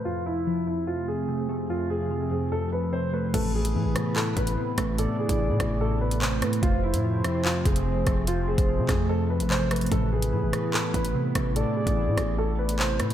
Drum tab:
CC |--------------------------------|--------------------------------|x-------------------------------|--------------------------------|
HH |--------------------------------|--------------------------------|x-----x-----x-------x-x-----x---|x-----x-----x---------x-----x-x-|
CP |--------------------------------|--------------------------------|----------------x---------------|------------------------x-------|
SD |--------------------------------|--------------------------------|------------r---------------r---|------------r---------------r---|
BD |--------------------------------|--------------------------------|o-------------------o-------o---|------o-----o-------------------|

CC |--------------------------------|--------------------------------|--------------------------------|--------------------------------|
HH |x-----x-----x-------x-x-----x---|x-----x-----x---------x-----xxxx|x-----x-----x-------x-x-----x---|x-----x-----x---------x-----x-x-|
CP |----------------x---------------|------------x-----------x-------|----------------x---------------|------------------------x-------|
SD |------------r---------------r---|------------r---------------r---|------------r---------------r---|------------r---------------r---|
BD |o-------------------o-------o---|------o-----o-------------------|o-------------------o-------o---|------o-----o-------------------|